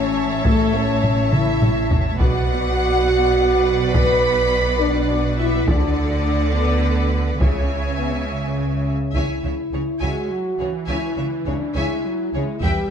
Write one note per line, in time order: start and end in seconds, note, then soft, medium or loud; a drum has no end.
0.00 2.15 A1 medium
0.00 2.16 A2 medium
0.00 0.46 C#4 medium
0.00 0.46 C#5 medium
0.00 2.16 C#5 medium
0.00 2.16 E5 medium
0.00 2.16 A5 medium
0.45 0.74 A3 medium
0.45 0.74 A4 medium
0.45 taiko medium
0.76 1.33 C#4 medium
0.76 1.33 C#5 medium
1.03 taiko low-mid medium
1.32 1.91 E4 medium
1.32 1.91 E5 medium
1.32 taiko mid medium
1.62 taiko low-mid medium
1.91 taiko low medium
2.19 5.63 B1 medium
2.19 5.64 B2 medium
2.19 3.90 F#4 loud
2.19 5.63 B4 medium
2.19 5.63 D5 medium
2.19 5.63 F#5 medium
2.19 3.90 F#5 medium
2.19 taiko medium
3.93 4.79 B4 loud
3.93 4.79 B5 medium
3.93 taiko medium
4.81 5.39 D4 medium
4.81 5.39 D5 medium
5.38 5.67 E4 medium
5.38 5.67 E5 medium
5.67 7.41 D2 medium
5.67 7.41 D3 medium
5.67 6.55 D4 medium
5.67 7.37 A4 medium
5.67 7.37 D5 medium
5.67 6.55 D5 medium
5.67 7.38 F#5 medium
5.67 taiko medium
6.53 7.41 B3 medium
6.53 7.41 B4 medium
7.40 8.92 C#2 medium
7.40 8.24 C#3 medium
7.40 8.92 C#3 medium
7.40 7.99 C#4 medium
7.40 8.91 C#5 medium
7.40 8.28 C#5 medium
7.40 8.91 E5 medium
7.40 8.91 G#5 medium
7.40 taiko medium
7.98 8.26 B3 medium
8.27 9.15 C#4 medium
9.14 9.22 C#2 soft
9.14 9.23 C#3 soft
9.14 10.02 E4 medium
9.14 9.42 C#5 medium
9.14 9.42 E5 soft
9.14 9.42 G#5 soft
9.14 taiko soft
9.43 9.51 C#2 soft
9.43 9.53 C#3 soft
9.43 9.54 C#5 soft
9.43 9.53 E5 soft
9.72 9.80 C#2 soft
9.72 9.81 C#3 soft
9.72 9.82 G#4 soft
9.72 9.82 C#5 soft
10.01 10.09 C#2 medium
10.01 10.10 C#3 soft
10.01 10.29 G#3 soft
10.01 10.72 F#4 medium
10.01 10.29 C#5 soft
10.01 10.29 E5 soft
10.01 10.29 G#5 soft
10.32 10.61 F#3 soft
10.59 10.67 C#2 soft
10.59 10.68 C#3 soft
10.59 11.74 E3 soft
10.59 10.68 G#4 soft
10.59 10.67 C#5 soft
10.59 10.68 C#5 soft
10.87 10.96 C#2 soft
10.87 10.97 C#3 medium
10.87 11.46 E4 medium
10.87 11.15 C#5 medium
10.87 11.16 E5 medium
10.87 11.15 G#5 soft
11.17 11.25 C#2 soft
11.17 11.26 C#3 soft
11.17 11.26 C#5 soft
11.17 11.25 E5 soft
11.45 11.53 C#2 soft
11.45 11.55 C#3 soft
11.45 11.76 D4 medium
11.45 11.54 G#4 soft
11.45 11.54 C#5 soft
11.45 11.55 C#5 soft
11.75 11.83 C#2 medium
11.75 11.85 C#3 medium
11.75 12.05 G#3 soft
11.75 12.63 E4 medium
11.75 12.03 C#5 soft
11.75 12.03 E5 medium
11.75 12.03 G#5 soft
12.05 12.34 F#3 soft
12.32 12.40 C#2 soft
12.32 12.43 C#3 soft
12.32 12.63 G#3 medium
12.32 12.42 G#4 soft
12.32 12.42 C#5 soft
12.62 12.70 E1 medium
12.62 12.72 E2 medium
12.62 12.90 G3 medium
12.62 12.90 G4 medium
12.62 12.90 B4 medium
12.62 12.89 E5 medium
12.62 12.90 G5 medium
12.62 taiko medium